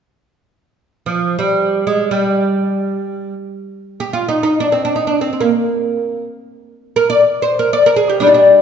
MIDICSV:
0, 0, Header, 1, 2, 480
1, 0, Start_track
1, 0, Tempo, 500000
1, 8274, End_track
2, 0, Start_track
2, 0, Title_t, "Oud"
2, 0, Program_c, 0, 24
2, 1020, Note_on_c, 0, 53, 66
2, 1327, Note_off_c, 0, 53, 0
2, 1331, Note_on_c, 0, 55, 76
2, 1787, Note_off_c, 0, 55, 0
2, 1793, Note_on_c, 0, 56, 69
2, 2022, Note_off_c, 0, 56, 0
2, 2026, Note_on_c, 0, 55, 70
2, 3198, Note_off_c, 0, 55, 0
2, 3841, Note_on_c, 0, 67, 71
2, 3964, Note_off_c, 0, 67, 0
2, 3968, Note_on_c, 0, 65, 81
2, 4110, Note_off_c, 0, 65, 0
2, 4114, Note_on_c, 0, 63, 70
2, 4243, Note_off_c, 0, 63, 0
2, 4254, Note_on_c, 0, 63, 76
2, 4414, Note_off_c, 0, 63, 0
2, 4418, Note_on_c, 0, 62, 70
2, 4530, Note_off_c, 0, 62, 0
2, 4534, Note_on_c, 0, 60, 66
2, 4650, Note_off_c, 0, 60, 0
2, 4654, Note_on_c, 0, 62, 77
2, 4755, Note_off_c, 0, 62, 0
2, 4759, Note_on_c, 0, 63, 66
2, 4864, Note_off_c, 0, 63, 0
2, 4867, Note_on_c, 0, 62, 62
2, 5000, Note_off_c, 0, 62, 0
2, 5004, Note_on_c, 0, 60, 64
2, 5103, Note_off_c, 0, 60, 0
2, 5114, Note_on_c, 0, 60, 45
2, 5188, Note_on_c, 0, 58, 64
2, 5198, Note_off_c, 0, 60, 0
2, 5984, Note_off_c, 0, 58, 0
2, 6683, Note_on_c, 0, 70, 86
2, 6809, Note_off_c, 0, 70, 0
2, 6813, Note_on_c, 0, 74, 87
2, 7122, Note_off_c, 0, 74, 0
2, 7126, Note_on_c, 0, 72, 79
2, 7284, Note_off_c, 0, 72, 0
2, 7288, Note_on_c, 0, 70, 78
2, 7418, Note_off_c, 0, 70, 0
2, 7421, Note_on_c, 0, 74, 85
2, 7540, Note_off_c, 0, 74, 0
2, 7547, Note_on_c, 0, 70, 86
2, 7642, Note_off_c, 0, 70, 0
2, 7645, Note_on_c, 0, 68, 81
2, 7762, Note_off_c, 0, 68, 0
2, 7771, Note_on_c, 0, 67, 71
2, 7872, Note_on_c, 0, 62, 80
2, 7887, Note_on_c, 0, 55, 63
2, 7900, Note_off_c, 0, 67, 0
2, 7935, Note_on_c, 0, 63, 74
2, 7947, Note_off_c, 0, 62, 0
2, 8006, Note_off_c, 0, 63, 0
2, 8010, Note_on_c, 0, 62, 83
2, 8274, Note_off_c, 0, 55, 0
2, 8274, Note_off_c, 0, 62, 0
2, 8274, End_track
0, 0, End_of_file